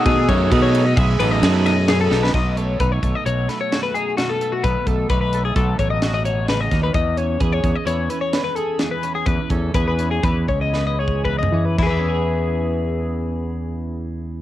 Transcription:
<<
  \new Staff \with { instrumentName = "Glockenspiel" } { \time 5/4 \key e \major \tempo 4 = 130 dis'''1 r4 | r1 r4 | r1 r4 | r1 r4 |
r1 r4 | r1 r4 | }
  \new Staff \with { instrumentName = "Clean electric guitar" } { \time 5/4 \key e \major gis'8 cis''8 b'16 cis''8 dis''16 e''8 b'16 dis''8 b'16 dis''8 gis'16 a'8 b'16 | dis''8 cis''8 b'16 cis''8 dis''16 cis''8 b'16 cis''8 b'16 gis'8 fis'16 a'8 fis'16 | b'8 a'8 b'16 b'8 gis'16 a'8 cis''16 dis''8 dis''16 cis''8 b'16 dis''8 b'16 | dis''8 cis''8 b'16 cis''8 dis''16 cis''8 b'16 cis''8 b'16 a'8 gis'16 b'8 gis'16 |
b'8 a'8 b'16 b'8 gis'16 b'8 cis''16 dis''8 dis''16 cis''8 b'16 dis''8 b'16 | <e' gis' b' e''>1~ <e' gis' b' e''>4 | }
  \new Staff \with { instrumentName = "Clean electric guitar" } { \time 5/4 \key e \major << { <a dis' gis'>8 dis'8 gis'8 dis'8 gis'8 a8 gis'4 <a dis' gis'>8 dis'8 | r8 a8 dis'8 a4 a8 fis'8 dis'4 a8~ | a8 a8 dis'8 a4 a8 fis'8 dis'4. | r8 cis'8 gis'8 cis'4 cis'8 b'8 gis'4 cis'8 |
r8 cis'8 gis'8 cis'4 cis'8 b'8 gis'4 cis'8 | <e cis' gis'>1~ <e cis' gis'>4 | } \\ { b,4 fis4. fis,4. b,4 | b,2 fis2 b,4 | b,2 fis2 cis8 dis8 | e,2 e2 e,4 |
e,2 e2 e,4 | e,1~ e,4 | } >> }
  \new Staff \with { instrumentName = "Overdriven electric guitar" } { \time 5/4 \key e \major <fis b dis' a'>8 <fis b dis' a'>8 <fis b dis' a'>8 r4 <fis b dis' a'>8 <fis b dis' a'>8 r4 <fis b dis' a'>8 | r1 r4 | r1 r4 | r1 r4 |
r1 r4 | r1 r4 | }
  \new Staff \with { instrumentName = "Fingered electric bass" } { \clef bass \time 5/4 \key e \major b,8 fis,8 b,4 b,,8 a,,8 fis,4. b,,8 | b,,4 b,,8 b,,16 r16 b,,8 r2 r8 | b,,16 r16 b,,8 b,,4 b,,8 a,,2 dis,8 | e,4 e,8 e,16 r16 e,8 r2 r8 |
e,16 r16 e,8 e,4 e,8 cis,2 e8 | e,1~ e,4 | }
  \new DrumStaff \with { instrumentName = "Drums" } \drummode { \time 5/4 <bd cymr>8 <bd cymr>8 <bd cymr>8 cymr8 <bd cymr>8 cymr8 <cymr sn>8 <cymr sn>8 \tuplet 3/2 { <cymr sn>16 r16 r16 sn16 r16 sn16 } | <cymc bd>8 hh8 <hh bd>8 <hh bd>8 hh8 <hh sn>8 <hh sn>8 hh8 <hh sn>8 hh8 | <hh bd>8 <hh bd>8 <hh bd>8 hh8 <hh bd>8 <hh bd>8 <hh sn>8 hh8 <hh sn>8 <hh bd sn>8 | <hh bd>8 hh8 <hh bd>8 <hh bd>8 hh8 hh8 <hh sn>8 hh8 <hh sn>8 hh8 |
<hh bd>8 <hh bd>8 <hh bd>8 hh8 <hh bd>8 <hh bd>8 \tuplet 3/2 { sn8 r8 bd8 bd8 tomfh8 r8 } | <cymc bd>4 r4 r4 r4 r4 | }
>>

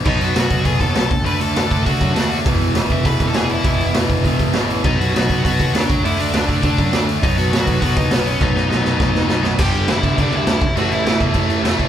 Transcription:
<<
  \new Staff \with { instrumentName = "Lead electric guitar" } { \time 4/4 \key b \mixolydian \tempo 4 = 202 <dis' dis''>8 <fis' fis''>4. <gis' gis''>8 <a' a''>4. | <b' b''>8 <a' a''>4. <fis' fis''>4 <fis' fis''>8. r16 | r4. <e' e''>8 <b' b''>8. <a' a''>16 <gis' gis''>8 <e' e''>8~ | <e' e''>4 r2. |
<dis' dis''>8 <fis' fis''>4. <fis' fis''>4 <d' d''>4 | <e' e''>8 <d' d''>4. <d' d''>4. r8 | <dis' dis''>8 <fis' fis''>4. <fis' fis''>8 <dis' dis''>8 <b b'>8 <cis' cis''>8 | <dis' dis''>2.~ <dis' dis''>8 r8 |
<g' g''>4 <e' e''>4 <d' d''>8 <e' e''>4. | <fis' fis''>8 <e' e''>4 r2 r8 | }
  \new Staff \with { instrumentName = "Distorted electric guitar" } { \clef bass \time 4/4 \key b \mixolydian <b, fis b>4 <b, fis b>4 <b, fis b>4 <b, fis b>8 r8 | <d a d'>4 <d a d'>4 <d a d'>4 <d a d'>4 | <e, b, e>4 <e, b, e>4 <e, b, e>4 <e, b, e>4 | <e, b, e>4 <e, b, e>4 <e, b, e>4 <e, b, e>4 |
<b, fis b>4 <b, fis b>4 <b, fis b>4 <b, fis b>8 r8 | <d a d'>4 <d a d'>4 <d a d'>4 <d a d'>4 | <b, fis b>4 <b, fis b>4 <b, fis b>4 <b, fis b>4 | <b, fis b>4 <b, fis b>4 <b, fis b>4 <b, fis b>4 |
<g, d g>4 <g, d g>4 <g, d g>4 <g, d g>8 r8 | <a, e a>4 <a, e a>4 <a, e a>4 <a, e a>4 | }
  \new Staff \with { instrumentName = "Overdriven electric guitar" } { \clef bass \time 4/4 \key b \mixolydian <b, fis b>4 <b, fis b>4 <b, fis b>4 <b, fis b>8 r8 | <d a d'>4 <d a d'>4 <d a d'>4 <d a d'>4 | <e, b, e>4 <e, b, e>4 <e, b, e>4 <e, b, e>4 | <e, b, e>4 <e, b, e>4 <e, b, e>4 <e, b, e>4 |
<b, fis b>4 <b, fis b>4 <b, fis b>4 <b, fis b>8 r8 | <d a d'>4 <d a d'>4 <d a d'>4 <d a d'>4 | <b, fis b>4 <b, fis b>4 <b, fis b>4 <b, fis b>4 | <b, fis b>4 <b, fis b>4 <b, fis b>4 <b, fis b>4 |
<g, d g>4 <g, d g>4 <g, d g>4 <g, d g>8 r8 | <a, e a>4 <a, e a>4 <a, e a>4 <a, e a>4 | }
  \new Staff \with { instrumentName = "Picked electric bass" } { \clef bass \time 4/4 \key b \mixolydian b,,8 b,,8 b,,8 b,,8 b,,8 dis,8 b,,8 d,8 | d,8 d,8 d,8 d,8 d,8 fis,8 dis,4 | e,,8 e,,8 e,,8 e,,8 e,,8 gis,,8 e,,4 | e,,8 e,,8 e,,8 e,,8 e,,8 gis,,8 a,,4 |
b,,8 b,,8 b,,8 b,,8 b,,8 dis,8 dis,8 d,8 | d,8 d,8 d,8 d,8 d,8 fis,8 d,4 | b,,8 b,,8 b,,8 b,,8 b,,8 dis,8 b,,4 | b,,8 b,,8 b,,8 b,,8 b,,8 dis,8 b,,4 |
g,,8 g,,8 g,,8 g,,8 g,,8 d,8 d,8 a,,8 | a,,8 a,,8 a,,8 e,8 a,,8 a,8 e,8 a,,8 | }
  \new DrumStaff \with { instrumentName = "Drums" } \drummode { \time 4/4 <cymc bd>8 hho8 <hho sn>8 <hho bd>8 <hho bd>8 <hho bd>8 <hho sn>8 <hho bd>8 | hho8 hho8 <hho sn>8 <hho bd>8 <hho bd>8 <hho bd>8 <hho sn>8 hho8 | <hho bd>8 hho8 <hho sn>8 <hho bd>8 <hho bd>8 <hho bd>8 <hho sn>8 hho8 | <hho bd>8 hho8 <hho sn>8 <hho bd>8 <hho bd>8 <hho bd>8 <hho sn>8 hho8 |
<cymc bd>8 hho8 <hho sn>8 <hho bd>8 <hho bd>8 <hho bd>8 <hho sn>8 <hho bd>8 | hho8 hho8 <hho sn>8 <hho bd>8 <hho bd>8 <hho bd>8 <hho sn>8 hho8 | <hho bd>8 hho8 <hho sn>8 <hho bd>8 <hho bd>8 <hho bd>8 <hho sn>8 hho8 | <bd sn>8 sn8 sn8 sn8 <bd sn>8 sn8 sn8 sn8 |
<cymc bd>8 cymc8 <cymc sn>8 <cymc bd>8 <cymc bd>8 cymc8 <cymc sn>8 <cymc bd>8 | cymc8 cymc8 <cymc sn>8 <cymc bd>8 <cymc bd>8 cymc8 <cymc sn>8 <cymc bd>8 | }
>>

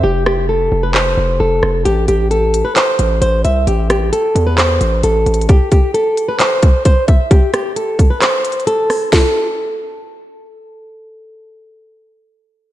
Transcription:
<<
  \new Staff \with { instrumentName = "Nylon-string guitar" } { \time 4/4 \key a \minor \tempo 4 = 132 g'8 g'8 a'8. b'16 c''4 a'4 | g'8 g'8 a'8. b'16 c''4 c''8 e''8 | g'8 g'8 a'8. b'16 c''4 a'4 | g'8 g'8 a'8. b'16 c''4 c''8 e''8 |
g'8 g'8 a'8. b'16 c''4 a'4 | a'2. r4 | r1 | }
  \new Staff \with { instrumentName = "808-style bass" } { \clef bass \time 4/4 \key a \minor f,,4. f,,4 f,,8 f,,8 f,,8 | a,,8 a,,4~ a,,16 r8. a,,8 a,,8 c,8 | a,,4 r8 e,4 a,,8 a,,8 a,,8 | r1 |
r1 | r1 | r1 | }
  \new DrumStaff \with { instrumentName = "Drums" } \drummode { \time 4/4 r8 ss8 r4 hc4 r8 ss8 | hh8 hh8 hh8 hh8 <hc hh>8 hh8 hh8 hh8 | hh8 <hh ss>8 hh8 hh8 <hc hh>8 hh8 \tuplet 3/2 { hh16 r16 r16 hh16 hh16 hh16 } | <hh bd>8 <hh bd>8 hh8 hh8 <hc hh>8 <hh bd>8 <hh bd>8 <hh bd>8 |
<hh bd>8 <hh ss>8 hh8 <hh bd>8 \tuplet 3/2 { <hc hh>16 r16 r16 hh16 hh16 hh16 } hh8 <hho ss>8 | <hho bd sn>4 r4 r4 r4 | r4 r4 r4 r4 | }
>>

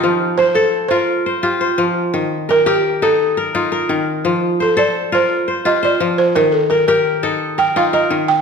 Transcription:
<<
  \new Staff \with { instrumentName = "Balafon" } { \time 12/8 \key f \mixolydian \tempo 4. = 114 r4 c''8 a'4 c''4 r2 r8 | r4 bes'8 g'4 a'4 r2 r8 | r4 a'8 d''4 c''4 r8 ees''8 d''4 c''8 | bes'8 a'8 bes'8 bes'4. r8 g''8 f''8 ees''4 g''8 | }
  \new Staff \with { instrumentName = "Kora" } { \time 12/8 \key f \mixolydian << { ees'16 r8. c''4. bes'4 c''8 g'8 c''4. | r4 bes'8 bes'4 a'4 bes'8 f'8 bes'4. | r4 c''8 c''4 bes'4 c''8 g'8 c''4. | r4 bes'8 bes'4 a'4 bes'8 f'8 bes'4. | } \\ { f4 r8 a'4 f'4 r8 f'4 f4 | ees4 r8 g'4 ees'4 r8 ees'4 ees4 | f4 r8 a'4 f'4 r8 f'4 f4 | ees4 r8 g'4 ees'4 r8 ees'4 ees4 | } >> }
>>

